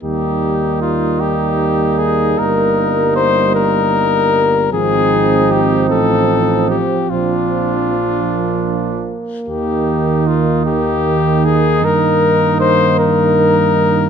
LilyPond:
<<
  \new Staff \with { instrumentName = "Cornet" } { \time 6/8 \key ees \major \tempo 4. = 51 g'4 f'8 g'4 aes'8 | bes'4 c''8 bes'4. | aes'4 g'8 a'4 g'8 | f'2~ f'8 r8 |
g'4 f'8 g'4 aes'8 | bes'4 c''8 bes'4. | }
  \new Staff \with { instrumentName = "Trumpet" } { \time 6/8 \key ees \major ees'2.~ | ees'2. | ees'2~ ees'8 r8 | d'2~ d'8 r8 |
ees'2.~ | ees'2. | }
  \new Staff \with { instrumentName = "French horn" } { \time 6/8 \key ees \major bes2.~ | bes2. | c'2.~ | c'4 r8 bes4.~ |
bes2. | bes2. | }
  \new Staff \with { instrumentName = "Trombone" } { \clef bass \time 6/8 \key ees \major g2.~ | g2. | f2.~ | f2~ f8 r8 |
ees2.~ | ees2. | }
  \new Staff \with { instrumentName = "Tuba" } { \clef bass \time 6/8 \key ees \major ees,2. | g,,2. | aes,,4. a,,4 r8 | bes,,2~ bes,,8 r8 |
ees,2. | g,2. | }
>>